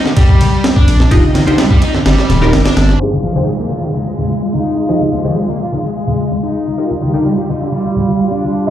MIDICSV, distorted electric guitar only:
0, 0, Header, 1, 2, 480
1, 0, Start_track
1, 0, Tempo, 472441
1, 1131, Time_signature, 4, 2, 24, 8
1, 8840, End_track
2, 0, Start_track
2, 0, Title_t, "Distorted electric guitar"
2, 0, Program_c, 0, 30
2, 52, Note_on_c, 0, 50, 72
2, 104, Note_off_c, 0, 50, 0
2, 166, Note_on_c, 0, 55, 83
2, 637, Note_off_c, 0, 55, 0
2, 770, Note_on_c, 0, 62, 74
2, 1240, Note_off_c, 0, 62, 0
2, 1364, Note_on_c, 0, 51, 77
2, 1459, Note_off_c, 0, 51, 0
2, 1492, Note_on_c, 0, 50, 100
2, 1578, Note_off_c, 0, 50, 0
2, 1605, Note_on_c, 0, 55, 82
2, 1663, Note_off_c, 0, 55, 0
2, 1730, Note_on_c, 0, 55, 95
2, 1842, Note_off_c, 0, 55, 0
2, 1845, Note_on_c, 0, 63, 76
2, 1967, Note_off_c, 0, 63, 0
2, 1972, Note_on_c, 0, 50, 76
2, 2025, Note_off_c, 0, 50, 0
2, 2087, Note_on_c, 0, 55, 83
2, 2557, Note_off_c, 0, 55, 0
2, 2690, Note_on_c, 0, 62, 73
2, 3048, Note_off_c, 0, 62, 0
2, 3286, Note_on_c, 0, 53, 65
2, 3380, Note_off_c, 0, 53, 0
2, 3411, Note_on_c, 0, 51, 82
2, 3498, Note_off_c, 0, 51, 0
2, 3526, Note_on_c, 0, 56, 70
2, 3584, Note_off_c, 0, 56, 0
2, 3655, Note_on_c, 0, 58, 85
2, 3764, Note_off_c, 0, 58, 0
2, 3768, Note_on_c, 0, 65, 62
2, 3888, Note_off_c, 0, 65, 0
2, 3891, Note_on_c, 0, 51, 62
2, 3944, Note_off_c, 0, 51, 0
2, 4008, Note_on_c, 0, 56, 72
2, 4478, Note_off_c, 0, 56, 0
2, 4608, Note_on_c, 0, 63, 67
2, 5080, Note_off_c, 0, 63, 0
2, 5209, Note_on_c, 0, 53, 66
2, 5302, Note_off_c, 0, 53, 0
2, 5330, Note_on_c, 0, 51, 88
2, 5417, Note_off_c, 0, 51, 0
2, 5448, Note_on_c, 0, 56, 72
2, 5505, Note_off_c, 0, 56, 0
2, 5573, Note_on_c, 0, 58, 89
2, 5683, Note_off_c, 0, 58, 0
2, 5688, Note_on_c, 0, 65, 65
2, 5808, Note_off_c, 0, 65, 0
2, 5813, Note_on_c, 0, 51, 64
2, 5865, Note_off_c, 0, 51, 0
2, 5931, Note_on_c, 0, 56, 72
2, 6399, Note_off_c, 0, 56, 0
2, 6538, Note_on_c, 0, 63, 69
2, 6892, Note_off_c, 0, 63, 0
2, 7128, Note_on_c, 0, 51, 66
2, 7222, Note_off_c, 0, 51, 0
2, 7252, Note_on_c, 0, 50, 88
2, 7338, Note_off_c, 0, 50, 0
2, 7366, Note_on_c, 0, 55, 74
2, 7424, Note_off_c, 0, 55, 0
2, 7493, Note_on_c, 0, 55, 88
2, 7603, Note_off_c, 0, 55, 0
2, 7608, Note_on_c, 0, 63, 67
2, 7728, Note_off_c, 0, 63, 0
2, 7734, Note_on_c, 0, 50, 65
2, 7786, Note_off_c, 0, 50, 0
2, 7845, Note_on_c, 0, 55, 73
2, 8316, Note_off_c, 0, 55, 0
2, 8451, Note_on_c, 0, 62, 64
2, 8840, Note_off_c, 0, 62, 0
2, 8840, End_track
0, 0, End_of_file